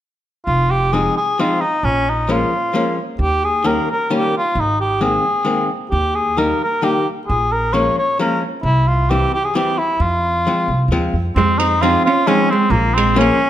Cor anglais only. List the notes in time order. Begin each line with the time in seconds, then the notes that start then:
0.46 F4
0.71 G4
0.92 G#4
1.17 G#4
1.40 F4
1.61 D#4
1.85 C#4
2.09 D#4
2.31 F4
3.21 G4
3.44 G#4
3.67 A#4
3.90 A#4
4.16 G4
4.37 F4
4.60 D#4
4.81 G4
5.02 G#4
5.90 G4
6.15 G#4
6.38 A#4
6.63 A#4
6.84 G4
7.27 G#4
7.52 A#4
7.73 C#5
7.98 C#5
8.20 A#4
8.64 E4
8.88 F4
9.10 G4
9.34 G4
9.44 G#4
9.55 G4
9.78 E4
10.01 F4
11.36 C4
11.58 D#4
11.81 F4
12.05 F4
12.27 C#4
12.50 C4
12.71 A#3
12.94 C4
13.18 C#4